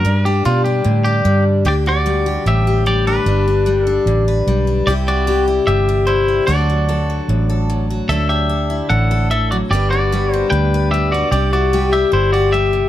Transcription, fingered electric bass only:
X:1
M:4/4
L:1/8
Q:1/4=149
K:G
V:1 name="Fingered electric bass" clef=bass
G,,2 B,,2 A,,2 G,,2 | D,,4 A,,,4 | G,,,4 A,,,2 B,,,2 | C,,4 G,,,4 |
D,,4 A,,,4 | D,,4 A,,,4 | G,,,4 D,,4 | C,,4 G,,,4 |]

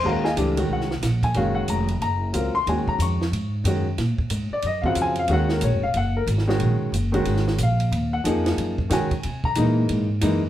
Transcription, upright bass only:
X:1
M:4/4
L:1/8
Q:"Swing" 1/4=183
K:Ebdor
V:1 name="Upright bass" clef=bass
E,,2 D,,2 C,,2 B,,,2 | G,,,2 F,,,2 G,,,2 D,, z | E,, z F,,2 A,,2 G,,2 | B,, z A,, z G,,2 F,,2 |
E,,2 (3B,,, G,,, E,,, G,,,2 A,,,2 | B,,, z G,,,2 A,,,2 B,,,2 | E,,2 F,,2 G,,2 D, z | C,2 B,,2 ^G,,2 _G,,2 |]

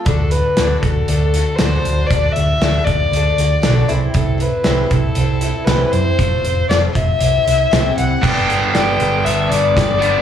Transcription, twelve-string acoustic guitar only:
X:1
M:4/4
L:1/8
Q:1/4=117
K:Dmix
V:1 name="Twelve-string acoustic guitar"
[D,A,DFA] [DFA] [D,A,DFA] [DFA] [A,DFA] [DFA] [D,A,DFA]2 | [D,A,DFA] [DFA] [D,A,DFA] [DFA] [A,DFA] [DFA] [D,A,DFA] [C,E,G,CEc]- | [C,E,G,CEc] [G,CEc] [C,E,G,CEc] [G,CEc] [G,CEc] [G,CEc] [C,E,G,CEc]2 | [=F,A,C=Fc] [CFc] [F,A,CFc] [CFc] [G,CEc] [G,CEc] [C,E,G,CEc]2 |
[G,DAB] [DAB] [G,DAB] [DAB] [G,DAB] [DAB] [G,DAB]2 |]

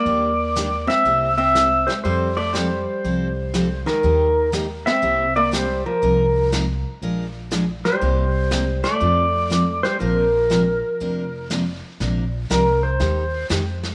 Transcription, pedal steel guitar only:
X:1
M:4/4
L:1/8
Q:"Swing" 1/4=120
K:Bb
V:1 name="Pedal steel guitar"
d3 =e2 e2 c | c d c4- c B- | B2 z =e2 d c B- | B2 z4 z c- |
c3 d4 c | B6 z2 | z2 B c3 z2 |]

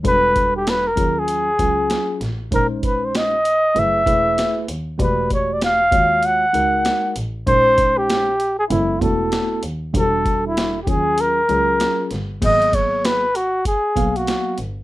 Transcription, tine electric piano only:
X:1
M:4/4
L:1/8
Q:"Swing 16ths" 1/4=97
K:D#m
V:1 name="Tine electric piano"
[=G,=DF=A]3 [F,CE^G]2 [F,CEG]2 z | [G,CD^B]3 z [=A,=EG=B] [A,EGB]2 z | [=A,F=G=d]3 [^G,EFc]2 [G,^DF^A]2 z | [G,CDA]3 z [G,B,=E=A] [=A,B,EF]2 z |
[=G,=DF=G=A]3 [F,CE^G]2 [F,CEG]2 z | [F,A,B,G]3 z2 [F,A,B,e]2 z |]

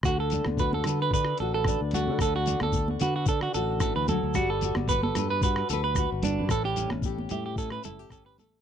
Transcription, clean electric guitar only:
X:1
M:4/4
L:1/16
Q:1/4=112
K:D
V:1 name="Clean electric guitar"
F A2 z B A2 B B2 A A2 z F2 | A F2 A2 z F F A F A2 A B A2 | F A2 z B A2 B B2 A B2 z D2 | A G2 z3 G G A B A2 A B A2 |]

